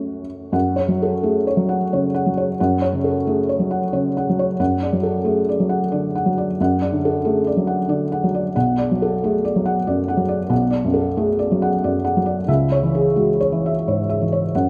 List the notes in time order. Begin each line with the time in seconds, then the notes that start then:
Already playing: F#2 F#3 A3 C#4 F#4
0.52 F#2 F#5
0.76 C#5
0.88 F#3
1.02 A4
1.23 A3 G#4
1.47 C#5
1.57 F#3
1.69 F#5
1.93 C#3 C#5
2.14 F#5
2.26 F#3
2.37 C#5
2.60 F#2 F#5
2.82 C#5
2.93 C#3
3.04 A4
3.27 A3 G#4
3.49 C#5
3.59 F#3
3.71 F#5
3.93 C#3 C#5
4.17 F#5
4.29 F#3
4.39 C#5
4.60 F#2 F#5
4.82 D5
4.93 F#3
5.03 A4
5.24 A3 G#4
5.49 D5
5.60 F#3
5.69 F#5
5.92 D3 D5
6.15 F#5
6.26 F#3
6.38 D5
6.60 F#2 F#5
6.82 D5
6.92 D3
7.05 A4
7.25 A3 G#4
7.47 D5
7.57 F#3
7.67 F#5
7.88 D3 D5
8.12 F#5
8.24 F#3
8.34 D5
8.56 B1 F#5
8.78 D5
8.91 F#3
9.02 A4
9.24 A3 G#4
9.45 D5
9.56 F#3
9.65 F#5
9.87 F#2 D5
10.08 F#5
10.17 F#3
10.28 D5
10.50 B1 F#5
10.70 D5
10.84 F#2
10.94 A4
11.17 A3 G#4
11.39 D5
11.52 F#3
11.62 F#5
11.84 F#2 D5
12.05 F#5
12.17 F#3
12.26 D5
12.48 C#2 E5
12.72 C#5
12.83 E3
12.95 G#4
13.16 G#3 F#4
13.40 C#5
13.52 E3
13.66 E5
13.88 G#2 C#5
14.09 E5
14.21 E3
14.32 C#5
14.55 F#2 F#5